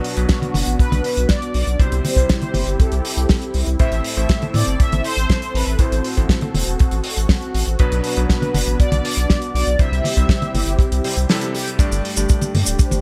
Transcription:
Already playing: electric grand piano B2 F#3 B3 D4 B4, analog synth pad B3 D4 F#4, analog polysynth F#4
0.04 open hi-hat
0.17 analog synth bass B1, electric grand piano B2 F#3 B3 D4 B4, closed hi-hat
0.29 analog polysynth F#4, kick, snare, closed hi-hat
0.42 closed hi-hat, high tom
0.54 analog synth bass F#1, open hi-hat, high tom
0.67 analog synth bass A1, closed hi-hat
0.79 analog polysynth B4, kick, closed hi-hat
0.92 analog synth bass B1, closed hi-hat, high tom
1.04 analog polysynth B4, open hi-hat
1.17 analog synth bass B1, closed hi-hat
1.29 analog polysynth D5, kick, snare, closed hi-hat
1.42 closed hi-hat
1.54 analog synth bass B1, analog polysynth D5, open hi-hat
1.67 analog synth bass B1, closed hi-hat
1.80 electric grand piano C3 G3 C4 E4 C5, analog synth pad C4 E4 G4, analog polysynth C5, kick, closed hi-hat
1.92 analog synth bass C2, closed hi-hat
2.05 open hi-hat, high tom
2.16 analog synth bass C2, electric grand piano C3 G3 C4 E4 C5, kick, closed hi-hat
2.29 kick, snare, closed hi-hat
2.42 closed hi-hat, high tom
2.54 analog synth bass G1, open hi-hat, high tom
2.67 analog synth bass G1, closed hi-hat
2.80 analog polysynth A4, kick, closed hi-hat
2.92 analog synth bass C2, closed hi-hat
3.05 open hi-hat
3.17 analog synth bass C2, closed hi-hat
3.29 kick, snare, open hi-hat
3.42 closed hi-hat
3.54 analog synth bass C2, open hi-hat
3.66 analog synth bass C2, closed hi-hat
3.79 electric grand piano A2 A3 C4 E4 C5, analog synth pad A4, analog polysynth E5, kick, closed hi-hat
3.92 analog synth bass A1, closed hi-hat
4.04 open hi-hat
4.17 analog synth bass A1, electric grand piano A2 A3 C4 E4 C5, analog polysynth E5, closed hi-hat
4.29 kick, snare, closed hi-hat
4.42 closed hi-hat, high tom
4.54 analog synth bass A2, analog polysynth D5, open hi-hat, high tom
4.67 analog synth bass G1, closed hi-hat
4.80 analog polysynth E5, kick, closed hi-hat
4.92 analog synth bass A1, closed hi-hat, high tom
5.04 analog polysynth C5, open hi-hat
5.17 analog synth bass A1, closed hi-hat
5.30 kick, snare, closed hi-hat
5.42 closed hi-hat
5.55 analog synth bass A1, analog polysynth B4, open hi-hat
5.67 analog synth bass A1, closed hi-hat
5.79 electric grand piano A2 A3 C4 E4 C5, analog synth pad F#4, analog polysynth C5, kick, closed hi-hat
5.92 analog synth bass A1, closed hi-hat
6.04 open hi-hat
6.17 analog synth bass A1, electric grand piano A2 A3 C4 E4 C5, kick, closed hi-hat
6.29 kick, snare, closed hi-hat
6.41 closed hi-hat, high tom
6.54 analog synth bass E1, open hi-hat, high tom
6.67 analog synth bass E1, closed hi-hat
6.79 kick, closed hi-hat
6.91 analog synth bass A1, closed hi-hat
7.04 open hi-hat
7.17 analog synth bass A1, closed hi-hat
7.29 kick, snare, open hi-hat
7.42 closed hi-hat
7.55 analog synth bass A1, open hi-hat
7.67 analog synth bass A1, closed hi-hat
7.79 electric grand piano B2 F#3 B3 D4 B4, analog synth pad B3 D4, analog polysynth B4, kick, closed hi-hat
7.92 analog synth bass B1, closed hi-hat
8.04 open hi-hat
8.17 analog synth bass B1, electric grand piano B2 F#3 B3 D4 B4, closed hi-hat
8.29 analog polysynth B4, kick, snare, closed hi-hat
8.42 closed hi-hat, high tom
8.54 analog synth bass F#1, open hi-hat, high tom
8.67 analog synth bass A1, closed hi-hat
8.79 analog polysynth D5, kick, closed hi-hat
8.92 analog synth bass B1, closed hi-hat, high tom
9.05 open hi-hat
9.17 analog synth bass B1, closed hi-hat
9.30 kick, snare, closed hi-hat
9.42 closed hi-hat
9.54 analog synth bass B1, analog polysynth D5, open hi-hat
9.67 analog synth bass B1, closed hi-hat
9.79 electric grand piano C3 G3 C4 E4 C5, analog synth pad C4 E4 G4, analog polysynth E5, kick, closed hi-hat
9.92 analog synth bass C2, closed hi-hat
10.04 open hi-hat, high tom
10.17 analog synth bass C2, electric grand piano C3 G3 C4 E4 C5, kick, closed hi-hat
10.29 kick, snare, closed hi-hat
10.42 closed hi-hat, high tom
10.54 analog synth bass G1, open hi-hat, high tom
10.67 analog synth bass G1, closed hi-hat
10.79 kick, closed hi-hat
10.92 analog synth bass C2, closed hi-hat
11.04 electric grand piano C3 G3 C4 E4 C5, open hi-hat
11.17 analog synth bass C2, closed hi-hat
11.29 electric grand piano C3 G3 C4 E4 A4, snare, open hi-hat
11.41 closed hi-hat
11.55 analog polysynth G4, open hi-hat
11.68 closed hi-hat
11.79 electric grand piano G2 A3 D4 G4 D5, analog synth pad A3 D4 G4, analog polysynth G4, kick, closed hi-hat, mid tom, cabasa
11.92 analog synth bass G1, closed hi-hat, cabasa
12.05 open hi-hat
12.17 analog synth bass G1, electric grand piano G2 A3 D4 G4 D5, closed hi-hat, cabasa
12.29 analog polysynth A4, kick, closed hi-hat, mid tom, cabasa
12.41 closed hi-hat, high tom, cabasa
12.54 analog synth bass G2, open hi-hat, high tom
12.66 analog synth bass D1, closed hi-hat, cabasa
12.79 analog polysynth C5, kick, closed hi-hat, mid tom, cabasa
12.91 analog synth bass G1, closed hi-hat, high tom, cabasa

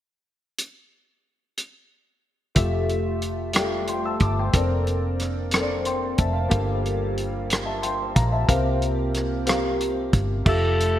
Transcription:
0.58 closed hi-hat
1.57 closed hi-hat
2.55 fingered electric bass F1, grand piano A3 F4 G4 E5, french horn section A3 F4 G4 E5, kick, closed hi-hat
2.89 closed hi-hat
3.22 closed hi-hat
3.53 grand piano G3 F4 G4 G5, cross-stick, closed hi-hat
3.60 grand piano A3
3.87 grand piano G5 C6, closed hi-hat
4.05 grand piano A5 E6
4.20 fingered electric bass G1, grand piano A5 D6, kick, closed hi-hat
4.39 grand piano G5 C6
4.52 fingered electric bass F1, french horn section A#3 C4 D4 C5, grand piano C4 A4 A#4 D5, kick, closed hi-hat
4.87 closed hi-hat
5.19 cross-stick, closed hi-hat
5.51 grand piano C4 A4 A#4 C5, cross-stick, closed hi-hat
5.60 grand piano D5
5.85 grand piano G5 C6, closed hi-hat
6.18 fingered electric bass F1, grand piano E5 A5, kick, closed hi-hat
6.33 grand piano C5 F5
6.48 fingered electric bass G1, grand piano G2 A#3 G4 A4 F5, french horn section F4 G4, kick, closed hi-hat
6.85 closed hi-hat
7.17 closed hi-hat
7.50 cross-stick, closed hi-hat
7.65 grand piano E5 A5
7.82 grand piano G5 C6, closed hi-hat
8.15 fingered electric bass A#1, grand piano F5 A#5, kick, closed hi-hat
8.32 grand piano E5 A5
8.47 fingered electric bass C2, grand piano C3 C4 G4 A#4 F5, french horn section A#3 C4, kick, closed hi-hat
8.82 closed hi-hat
9.14 cross-stick, closed hi-hat
9.45 grand piano C4 G4 A#4 F5, closed hi-hat
9.49 cross-stick
9.80 closed hi-hat
10.13 fingered electric bass G1, kick, closed hi-hat
10.45 fingered electric bass F1, grand piano A3 F4 G4 E5, alto saxophone A4, kick, crash
10.80 closed hi-hat

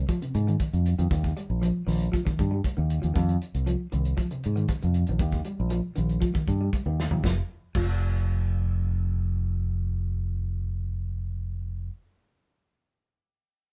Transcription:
0.09 clean electric guitar F3, kick, closed hi-hat
0.22 clean electric guitar C3, closed hi-hat
0.34 fingered electric bass G#2, closed hi-hat
0.47 clean electric guitar D#3, closed hi-hat
0.60 kick, closed hi-hat
0.73 fingered electric bass F2, closed hi-hat
0.86 closed hi-hat
0.99 fingered electric bass F2, clean electric guitar D#3, closed hi-hat
1.11 fingered electric bass D#2, clean electric guitar D#3, kick, closed hi-hat
1.24 kick, closed hi-hat
1.37 clean electric guitar G3, closed hi-hat
1.50 fingered electric bass A#1
1.62 clean electric guitar F3, closed hi-hat
1.87 fingered electric bass A#1, clean electric guitar D#3, open hi-hat
2.02 closed hi-hat
2.12 clean electric guitar F3, kick, closed hi-hat
2.25 clean electric guitar D#3, kick, closed hi-hat
2.39 fingered electric bass G2, kick, closed hi-hat
2.51 clean electric guitar G3
2.64 kick, closed hi-hat
2.77 fingered electric bass D#2, clean electric guitar D#3
2.90 closed hi-hat
3.02 fingered electric bass D#2, clean electric guitar F3, closed hi-hat
3.14 fingered electric bass F2, clean electric guitar D#3, kick, closed hi-hat
3.29 closed hi-hat
3.41 closed hi-hat
3.54 fingered electric bass C2, closed hi-hat
3.66 clean electric guitar F3, closed hi-hat
3.92 fingered electric bass C2, clean electric guitar D#3, closed hi-hat
4.05 closed hi-hat
4.17 clean electric guitar F3, kick, closed hi-hat
4.31 clean electric guitar C3, closed hi-hat
4.44 fingered electric bass G#2, closed hi-hat
4.56 clean electric guitar D#3, closed hi-hat
4.68 kick, closed hi-hat
4.82 fingered electric bass F2, clean electric guitar C3, closed hi-hat
4.94 closed hi-hat
5.07 fingered electric bass A#1, clean electric guitar D#3, closed hi-hat
5.19 fingered electric bass D#2, clean electric guitar D#3, kick, closed hi-hat
5.32 kick, closed hi-hat
5.44 clean electric guitar G3, closed hi-hat
5.60 fingered electric bass A#1
5.70 clean electric guitar F3, closed hi-hat
5.96 fingered electric bass A#1, clean electric guitar D#3, closed hi-hat
6.09 closed hi-hat
6.20 clean electric guitar F3, kick, closed hi-hat
6.34 clean electric guitar D#3, kick, closed hi-hat
6.48 fingered electric bass G2, kick, closed hi-hat
6.61 clean electric guitar G3
6.73 kick, closed hi-hat
6.86 fingered electric bass D#2, clean electric guitar D#3
7.00 snare
7.11 fingered electric bass D#2, clean electric guitar F3, floor tom
7.24 fingered electric bass F1, clean electric guitar F3, kick, snare
7.75 fingered electric bass F1, clean electric guitar F3, kick, crash

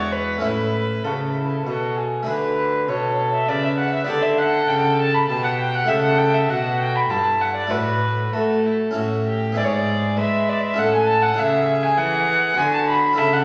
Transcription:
Already playing: harpsichord E2 G#3 D4 E4, cello E2, violin F#4 C#5
0.12 violin B4
0.38 harpsichord A3 C#4 E4
0.42 cello A2, harpsichord A2, violin E4 B4
1.04 cello C#3, harpsichord C#3, violin F#4 A4
1.12 violin B4
1.20 violin A4
1.30 violin B4
1.35 violin E4 A4
1.46 violin B4
1.54 violin A4
1.63 cello B2, harpsichord B2, violin F#4 B4
1.70 violin A4
1.96 violin G#4
2.23 harpsichord A3 D4 F#4
2.28 harpsichord D3, cello D3, violin B4
2.88 harpsichord B2, cello B2, violin A4 C#5
3.34 violin E5
3.49 harpsichord C#3, cello C#3, violin B4 D5
3.64 violin E5
3.79 violin F#5
3.93 violin E5
4.05 harpsichord B3 E4 G4, violin D5
4.09 harpsichord D3, cello D3, violin A4
4.22 violin E5
4.38 violin F#5
4.68 cello C#3, harpsichord C#3, violin G5
4.99 violin A5
5.14 violin B5
5.29 cello B2, harpsichord B2, violin G4 A5
5.44 violin F#5
5.59 violin G5
5.75 violin F#5
5.84 harpsichord A3 E4 G4
5.88 harpsichord C#3, cello C#3, violin A4 E5
6.04 violin F#5
6.18 violin G5
6.34 violin E5
6.49 harpsichord B2, cello B2, violin F#4 F#5
6.80 violin G5
6.96 violin B5
7.10 harpsichord G2, cello G2, violin E4 A5
7.41 violin F#5
7.56 violin D5
7.67 harpsichord A3 D4 F#4, violin B4
7.71 harpsichord A2, cello A2, violin F#4
8.33 harpsichord A3, cello A3, violin F#4 A4
8.65 violin E4
8.91 harpsichord C#4 E4 A4
8.95 harpsichord A2, cello A2, violin F#4
9.28 violin G4
9.52 harpsichord B3 E4 B4
9.57 cello G#2, harpsichord G#2, violin G#4 D5
9.64 violin C#5
9.73 violin D5
10.17 cello G#3, harpsichord G#3, violin B4 E5
10.49 violin D5
10.63 violin E5
10.74 harpsichord C#4 E4 A4, violin A4
10.78 cello A2, harpsichord A2, violin F#5
10.94 violin G#5
11.08 violin A5
11.22 violin F#5
11.34 cello C#3, harpsichord C#4 E4 A4, violin G#4
11.38 harpsichord C#3, violin E5
11.83 violin G#5
11.98 harpsichord E3, cello E3, violin F#5
12.54 harpsichord D3 B3 F#4 B4, cello D3, violin F#4 G#5
12.74 violin A5
12.88 violin B5
13.13 harpsichord C#4 E4 A4
13.17 cello C#3, harpsichord C#3, violin A4 E5
13.33 violin F#5

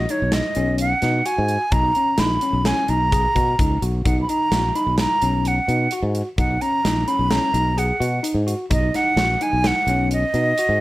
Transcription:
Already playing: flute D#5
0.09 tine electric piano D#4, flute C#5, closed hi-hat
0.22 fretless electric bass B1
0.32 flute D#5, snare, closed hi-hat
0.55 fretless electric bass B1, tine electric piano C#4, closed hi-hat
0.78 flute F#5, closed hi-hat
1.02 fretless electric bass B2, tine electric piano D#4, snare, closed hi-hat
1.26 tine electric piano F#4, flute G#5, closed hi-hat
1.38 fretless electric bass G#2
1.48 closed hi-hat
1.72 fretless electric bass B1, tine electric piano D#4, flute A#5, kick, closed hi-hat
1.95 tine electric piano C#4, closed hi-hat
2.18 fretless electric bass A#1, tine electric piano D#4, flute B5, snare, closed hi-hat
2.41 tine electric piano C#4, closed hi-hat
2.53 fretless electric bass B1
2.65 tine electric piano C#4, flute G#5, snare, closed hi-hat
2.88 fretless electric bass B1, tine electric piano D#4, flute A#5, closed hi-hat
3.12 tine electric piano G#4, kick, closed hi-hat
3.35 fretless electric bass B2, tine electric piano F#4, kick, closed hi-hat
3.59 fretless electric bass C#2, tine electric piano D#4, kick, closed hi-hat
3.82 fretless electric bass B1, tine electric piano F#4, closed hi-hat
4.05 fretless electric bass B1, tine electric piano D#4, flute F#5, kick, closed hi-hat
4.22 flute B5
4.29 tine electric piano D#4, flute A#5, closed hi-hat
4.51 fretless electric bass A#1, tine electric piano F#4, snare, closed hi-hat
4.75 tine electric piano D#4, flute B5, closed hi-hat
4.87 fretless electric bass B1
4.98 flute A#5, snare, closed hi-hat
5.22 fretless electric bass B1, tine electric piano C#4, closed hi-hat
5.45 flute F#5, closed hi-hat
5.68 fretless electric bass B2, tine electric piano D#4, closed hi-hat
5.91 tine electric piano F#4, closed hi-hat
6.03 fretless electric bass G#2
6.15 closed hi-hat
6.38 fretless electric bass B1, tine electric piano D#4, flute F#5, kick, closed hi-hat
6.61 tine electric piano C#4, flute A#5, closed hi-hat
6.84 fretless electric bass A#1, tine electric piano D#4, snare, closed hi-hat
7.08 tine electric piano C#4, flute B5, closed hi-hat
7.19 fretless electric bass B1
7.31 tine electric piano C#4, flute A#5, snare, closed hi-hat
7.54 fretless electric bass B1, tine electric piano D#4, closed hi-hat
7.77 tine electric piano G#4, flute F#5, closed hi-hat
8.00 fretless electric bass B2, tine electric piano F#4, closed hi-hat
8.23 tine electric piano D#4, closed hi-hat
8.34 fretless electric bass G#2
8.47 tine electric piano F#4, closed hi-hat
8.70 fretless electric bass B1, tine electric piano D#4, flute D#5, kick, closed hi-hat
8.94 tine electric piano D#4, flute F#5, snare, closed hi-hat
9.16 fretless electric bass A#1, tine electric piano F#4, snare, closed hi-hat
9.41 tine electric piano D#4, flute G#5, closed hi-hat
9.53 fretless electric bass B1
9.64 flute F#5, snare, closed hi-hat
9.87 fretless electric bass B1, tine electric piano C#4, closed hi-hat
10.11 flute D#5, closed hi-hat
10.34 fretless electric bass B2, tine electric piano D#4, closed hi-hat
10.58 tine electric piano F#4, closed hi-hat
10.69 fretless electric bass G#2

